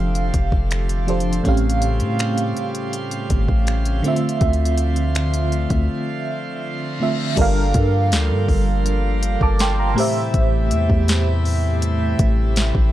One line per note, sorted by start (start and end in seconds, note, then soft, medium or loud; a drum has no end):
0.00 0.32 F1 loud
0.00 1.41 D3 medium
0.00 1.03 F3 medium
0.00 1.41 F3 medium
0.00 7.33 A3 medium
0.00 1.42 C4 medium
0.00 1.04 D4 medium
0.00 7.34 F4 medium
0.00 1.04 G4 medium
0.00 1.05 A4 medium
0.00 1.06 F5 medium
0.15 closed hi-hat medium
0.34 0.52 F1 medium
0.34 kick medium
0.34 closed hi-hat medium
0.52 1.41 F1 loud
0.52 kick medium
0.71 finger snap loud
0.71 closed hi-hat medium
0.89 closed hi-hat medium
1.07 1.45 F3 medium
1.07 1.45 D4 medium
1.07 1.45 G4 soft
1.07 1.46 A4 medium
1.07 1.46 C5 medium
1.07 closed hi-hat soft
1.20 closed hi-hat soft
1.33 closed hi-hat soft
1.43 2.02 A1 loud
1.43 3.99 A2 medium
1.43 4.02 C#3 medium
1.43 4.02 G3 medium
1.43 4.00 A3 medium
1.43 4.00 C4 medium
1.43 4.01 C#4 medium
1.43 7.34 C5 medium
1.43 kick loud
1.43 closed hi-hat medium
1.48 4.02 G4 medium
1.48 4.02 F5 medium
1.57 closed hi-hat medium
1.70 closed hi-hat medium
1.82 closed hi-hat medium
2.00 2.53 A2 medium
2.00 closed hi-hat soft
2.19 finger snap loud
2.19 closed hi-hat medium
2.38 closed hi-hat medium
2.57 closed hi-hat soft
2.75 closed hi-hat medium
2.93 closed hi-hat medium
3.11 closed hi-hat medium
3.30 3.48 G1 medium
3.30 kick medium
3.30 closed hi-hat medium
3.48 4.02 A1 loud
3.48 kick medium
3.67 finger snap loud
3.67 closed hi-hat medium
3.85 closed hi-hat medium
4.02 6.96 D3 medium
4.02 7.34 D3 medium
4.02 7.34 F3 medium
4.02 6.96 A3 medium
4.02 6.97 C4 medium
4.02 closed hi-hat soft
4.07 6.98 F4 medium
4.07 6.98 E5 medium
4.16 closed hi-hat soft
4.29 closed hi-hat soft
4.41 5.67 D2 loud
4.41 kick loud
4.41 closed hi-hat soft
4.53 closed hi-hat medium
4.65 closed hi-hat medium
4.78 closed hi-hat medium
4.96 closed hi-hat soft
5.15 finger snap loud
5.15 closed hi-hat medium
5.34 closed hi-hat medium
5.52 closed hi-hat soft
5.70 5.88 D2 loud
5.70 kick medium
5.70 closed hi-hat medium
5.89 reverse cymbal medium
7.00 7.37 D3 medium
7.00 7.38 A3 medium
7.00 7.38 C4 medium
7.00 7.38 F4 soft
7.00 7.39 E5 medium
7.36 7.73 G1 loud
7.36 9.94 D3 medium
7.36 9.94 F3 medium
7.36 9.92 G3 medium
7.36 12.92 G3 medium
7.36 9.94 A#3 medium
7.36 9.93 D4 medium
7.36 9.94 F4 medium
7.36 9.93 A4 medium
7.36 kick loud
7.36 closed hi-hat medium
7.36 crash loud
7.40 9.94 A#4 medium
7.40 8.85 F5 medium
7.74 8.13 G2 loud
7.74 kick medium
7.74 closed hi-hat medium
8.12 8.32 D2 loud
8.12 snare loud
8.12 closed hi-hat medium
8.30 8.48 G2 loud
8.48 9.38 G1 loud
8.48 kick medium
8.48 open hi-hat soft
8.86 closed hi-hat medium
9.23 closed hi-hat medium
9.41 9.95 G1 loud
9.41 9.60 A5 medium
9.41 9.60 D6 medium
9.41 kick loud
9.59 9.78 G5 medium
9.59 9.78 C6 medium
9.59 snare loud
9.59 closed hi-hat medium
9.79 10.14 F5 medium
9.79 10.14 A#5 medium
9.95 12.88 A2 medium
9.95 12.92 C3 medium
9.95 12.92 E3 medium
9.95 12.89 A3 medium
9.95 12.92 A3 medium
9.95 12.92 E4 medium
9.95 12.89 G4 medium
9.95 open hi-hat medium
9.99 12.90 C5 medium
9.99 12.91 E5 medium
10.34 10.73 A1 loud
10.34 kick loud
10.34 closed hi-hat medium
10.71 10.89 E2 medium
10.71 closed hi-hat medium
10.90 12.15 E2 loud
10.90 kick loud
11.08 snare loud
11.08 closed hi-hat medium
11.45 open hi-hat soft
11.82 closed hi-hat medium
12.19 12.73 A1 loud
12.19 kick loud
12.19 closed hi-hat medium
12.56 snare loud
12.56 closed hi-hat medium
12.75 12.92 A1 loud
12.75 kick loud